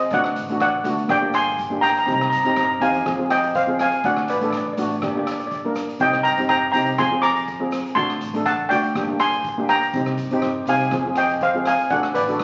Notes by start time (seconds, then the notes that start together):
Already playing: C5 D#5
0.10 D2 A3 D4 D5 F#5, kick, closed hi-hat, shaker
0.14 F#4
0.24 cross-stick
0.36 A1, closed hi-hat, shaker
0.49 A3 D4 F#4, closed hi-hat
0.60 D5 F#5, kick, cross-stick, closed hi-hat, shaker
0.84 D2 A3 D4 F#4, closed hi-hat, shaker
0.98 closed hi-hat
1.08 G1 A#3 D4 G4 D5 G5, kick, cross-stick, closed hi-hat, shaker
1.21 A#3 D4 G4
1.33 G#5 C6, cross-stick, closed hi-hat, shaker
1.47 closed hi-hat
1.58 kick, closed hi-hat, shaker
1.70 A#3 D4 G4
1.81 G5 A#5, cross-stick, closed hi-hat, shaker
1.90 A#5
1.96 A#5, closed hi-hat, shaker
2.05 C2 C4 D#4 G4 A#5, kick, closed hi-hat, shaker
2.13 A#5
2.21 A#5, cross-stick
2.30 G2 A#5, closed hi-hat, shaker
2.37 A#5
2.44 C4 D#4 G4 A#5, closed hi-hat
2.50 A#5
2.56 A#5, kick, cross-stick, closed hi-hat, shaker
2.65 A#5
2.80 E2 C4 D#4 G4 F5 G#5, closed hi-hat
2.94 closed hi-hat
3.05 F2 C4 F4 G#4, kick, cross-stick, closed hi-hat, shaker
3.18 C4 F4 G#4
3.30 D#5 G5, cross-stick, closed hi-hat, shaker
3.43 closed hi-hat
3.55 C5 F5, kick, closed hi-hat, shaker
3.67 C4 F4 G#4
3.79 F5 G#5, cross-stick, closed hi-hat, shaker
3.92 closed hi-hat, shaker
4.04 D2 A3 D4 F#4 D5 F#5, kick, closed hi-hat, shaker
4.17 cross-stick
4.28 A1 B4 D5, closed hi-hat, shaker
4.37 D5, closed hi-hat
4.41 A3 D4 A4 D5
4.50 D5, kick, cross-stick, closed hi-hat, shaker
4.58 D5
4.68 D5
4.73 D5
4.77 A1 A3 D4 F#4, closed hi-hat, shaker
4.82 D5
4.89 D5, closed hi-hat
4.96 D5
5.02 G1 A#3 D4 G4 D5, kick, cross-stick, closed hi-hat, shaker
5.10 D5
5.15 A#3 D4 G4 D5
5.26 D5, cross-stick, closed hi-hat, shaker
5.32 D5
5.40 D5, closed hi-hat
5.47 D5, closed hi-hat
5.51 D5, kick, shaker
5.65 A#3 D4 A#4
5.75 cross-stick, closed hi-hat, shaker
5.89 closed hi-hat
5.99 C2 C4 D#4 G4 D#5 G5, kick, closed hi-hat, shaker
6.13 cross-stick
6.23 G2 G5 A#5, closed hi-hat, shaker
6.37 C4 D#4 G4, closed hi-hat
6.49 G5 A#5, kick, cross-stick, closed hi-hat, shaker
6.72 C2 C4 D#4 G5 A#5, closed hi-hat, shaker
6.76 G4
6.86 closed hi-hat
6.98 F2 C4 F4 G#4 G#5 C6, kick, cross-stick, closed hi-hat, shaker
7.11 C4 F4 G#4
7.22 A#5 D6, cross-stick, closed hi-hat, shaker
7.36 closed hi-hat
7.47 kick, closed hi-hat, shaker
7.60 C4 F4 G#4
7.72 cross-stick, closed hi-hat, shaker
7.86 closed hi-hat
7.95 D2 A3 D4 F#4 A5 C6, kick, closed hi-hat, shaker
8.10 cross-stick
8.21 A1, closed hi-hat, shaker
8.34 A3 D4 A4, closed hi-hat
8.46 F#5 A5, kick, cross-stick, closed hi-hat, shaker
8.69 D2 A3 D4 F#4 D5 G5, closed hi-hat, shaker
8.83 closed hi-hat
8.95 G1 A#3 D4 G4, kick, cross-stick, closed hi-hat, shaker
9.08 A#3 D4 G4
9.20 G#5 C6, cross-stick, closed hi-hat, shaker
9.33 closed hi-hat
9.44 kick, closed hi-hat, shaker
9.58 A#3 D4 G4
9.69 G5 A#5, cross-stick, closed hi-hat, shaker
9.82 closed hi-hat
9.93 C2 C4 D#4 G4, kick, closed hi-hat, shaker
10.06 cross-stick
10.17 G2, closed hi-hat, shaker
10.31 C4 D#4 G4, closed hi-hat
10.42 kick, cross-stick, closed hi-hat, shaker
10.65 C2 C4 D#4 G4 F5 G#5, closed hi-hat, shaker
10.80 closed hi-hat
10.91 F2 C4 F4 G#4, kick, cross-stick, closed hi-hat, shaker
11.05 C4 F4 G#4
11.15 D#5 G5, cross-stick, closed hi-hat, shaker
11.29 closed hi-hat
11.41 C5 F5, kick, closed hi-hat, shaker
11.54 C4 F4 G#4
11.65 F5 G#5, cross-stick, closed hi-hat, shaker
11.79 closed hi-hat
11.90 D2 D4 F#4 A4 D5 F#5, kick, closed hi-hat, shaker
12.03 cross-stick
12.15 A1 B4 D5, closed hi-hat, shaker
12.28 D4 F#4 A4, closed hi-hat
12.39 kick, cross-stick, closed hi-hat, shaker